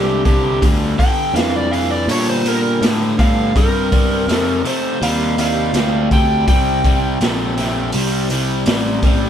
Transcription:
0.00 0.59 C2 medium
0.00 0.21 G2 medium
0.00 0.21 D3 medium
0.00 0.24 G4 medium
0.24 0.58 G2 medium
0.24 0.58 D3 medium
0.24 0.61 G4 medium
0.24 kick medium
0.24 open hi-hat medium
0.61 0.97 D2 medium
0.61 0.95 G2 medium
0.61 0.95 D3 medium
0.61 kick medium
0.61 open hi-hat medium
0.98 1.31 G2 medium
0.98 1.32 D3 medium
0.98 1.35 G5 loud
0.98 muted picked electric bass stroke soft
0.98 kick medium
0.98 open hi-hat medium
1.34 2.06 F2 medium
1.34 1.68 G2 medium
1.34 1.68 E3 medium
1.34 1.54 F5 medium
1.34 snare medium
1.34 open hi-hat medium
1.56 1.73 D5 medium
1.71 2.05 G2 medium
1.71 2.05 E3 medium
1.71 1.90 F5 medium
1.71 open hi-hat medium
1.90 2.08 D5 medium
2.08 2.42 G2 medium
2.08 2.79 A#2 medium
2.08 2.42 D3 loud
2.08 2.28 C#5 medium
2.08 open hi-hat medium
2.30 2.46 C5 medium
2.45 2.78 G2 medium
2.45 2.79 D3 medium
2.45 2.82 A#4 medium
2.45 open hi-hat soft
2.81 3.15 G2 medium
2.81 3.53 A2 medium
2.81 3.15 D3 loud
2.81 snare loud
2.81 open hi-hat medium
3.18 3.51 G2 medium
3.18 3.52 D3 medium
3.18 3.55 F5 medium
3.18 kick medium
3.18 open hi-hat medium
3.55 4.26 G2 medium
3.55 3.88 C3 medium
3.55 3.89 G3 medium
3.55 4.62 A#4 loud
3.55 kick loud
3.55 open hi-hat medium
3.92 4.25 C3 medium
3.92 4.25 G3 medium
3.92 kick medium
3.92 open hi-hat medium
4.27 4.62 F2 medium
4.27 4.61 C3 medium
4.27 4.62 A3 medium
4.27 snare medium
4.27 open hi-hat medium
4.64 4.97 C3 medium
4.64 4.98 A3 medium
4.64 5.02 C5 medium
4.64 muted picked electric bass stroke soft
4.64 open hi-hat medium
5.01 5.73 D#2 medium
5.01 5.34 C3 medium
5.01 5.34 G3 medium
5.01 5.38 F5 loud
5.01 open hi-hat medium
5.38 5.71 C3 medium
5.38 5.71 G3 medium
5.38 6.10 F5 medium
5.38 open hi-hat medium
5.74 6.45 D2 medium
5.74 6.08 C3 medium
5.74 6.08 G3 loud
5.74 snare loud
5.74 open hi-hat medium
6.11 6.44 C3 medium
6.11 6.45 G3 medium
6.11 6.47 G5 medium
6.11 kick medium
6.11 open hi-hat soft
6.47 7.18 C2 medium
6.47 6.81 C3 medium
6.47 6.81 G3 medium
6.47 7.90 G5 loud
6.47 kick loud
6.47 open hi-hat medium
6.84 7.17 C3 medium
6.84 7.18 G3 medium
6.84 kick medium
6.84 open hi-hat medium
7.20 7.91 A#1 medium
7.20 7.54 C3 medium
7.20 7.54 A3 medium
7.20 snare loud
7.20 open hi-hat medium
7.57 7.90 C3 medium
7.57 7.90 A3 medium
7.57 snare soft
7.57 open hi-hat medium
7.92 8.65 C2 medium
7.92 8.27 C3 medium
7.92 8.27 G3 medium
7.92 open hi-hat medium
8.30 8.63 C3 medium
8.30 8.64 G3 medium
8.30 open hi-hat soft
8.66 9.29 A1 medium
8.66 9.00 C3 medium
8.66 9.00 G3 medium
8.66 snare loud
8.66 open hi-hat medium
9.03 9.29 C3 medium
9.03 9.29 G3 medium
9.03 kick medium
9.03 open hi-hat medium

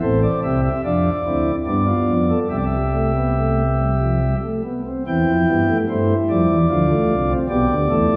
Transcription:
0.02 0.27 A1 medium
0.02 0.27 A2 medium
0.02 0.72 C4 medium
0.02 0.27 A4 medium
0.02 0.19 C5 medium
0.23 0.40 D5 medium
0.43 0.69 C2 medium
0.43 0.69 C3 medium
0.43 0.69 G4 medium
0.43 0.61 E5 medium
0.64 0.81 E5 medium
0.84 1.10 F2 medium
0.84 1.10 F3 medium
0.84 1.10 D4 medium
0.84 1.10 F4 medium
0.84 1.55 D5 medium
1.25 1.51 D2 medium
1.25 1.51 D3 medium
1.25 1.51 C4 medium
1.25 1.51 E4 medium
1.66 1.92 G2 medium
1.66 1.92 G3 medium
1.66 2.39 B3 medium
1.66 1.84 D4 medium
1.66 2.39 D5 medium
1.87 2.13 F4 medium
2.08 2.35 F2 medium
2.08 2.34 F3 medium
2.29 2.48 A4 medium
2.50 4.34 C2 medium
2.50 4.34 C3 medium
2.50 2.77 G3 medium
2.50 4.34 G4 medium
2.50 2.56 E5 medium
2.57 2.65 D5 medium
2.65 4.36 E5 medium
2.93 3.12 A3 medium
3.15 3.33 B3 medium
3.36 3.63 A3 medium
3.79 3.98 G3 medium
4.00 4.19 F3 medium
4.22 4.40 G3 medium
4.44 4.62 A3 medium
4.64 4.83 B3 medium
4.87 5.04 C4 medium
5.07 5.25 E2 medium
5.07 5.25 E3 medium
5.07 5.32 C4 medium
5.07 5.77 E4 medium
5.07 5.78 G5 medium
5.28 5.45 F2 medium
5.28 5.45 F3 medium
5.48 5.66 G2 medium
5.48 5.66 G3 medium
5.48 5.73 B3 medium
5.68 5.86 A3 medium
5.89 6.14 G2 medium
5.89 6.14 G3 medium
5.89 6.14 A3 medium
5.89 6.58 E4 medium
5.89 6.14 C5 medium
6.29 6.46 F2 medium
6.29 6.46 F3 medium
6.29 6.54 G3 medium
6.29 7.33 D5 medium
6.49 6.66 E2 medium
6.49 6.66 E3 medium
6.69 6.94 D2 medium
6.69 6.94 D3 medium
6.69 6.86 F3 medium
6.69 7.38 F4 medium
6.89 7.14 A3 medium
7.09 7.34 C2 medium
7.09 7.34 C3 medium
7.29 7.47 C4 medium
7.49 7.66 B1 medium
7.49 7.67 B2 medium
7.49 7.74 B3 medium
7.49 7.74 G4 medium
7.49 8.16 D5 medium
7.69 7.86 D2 medium
7.69 7.86 D3 medium
7.89 8.06 E2 medium
7.89 8.07 E3 medium
7.89 8.14 A3 medium
7.89 8.14 A4 medium
8.09 8.16 F2 medium
8.09 8.16 F3 medium

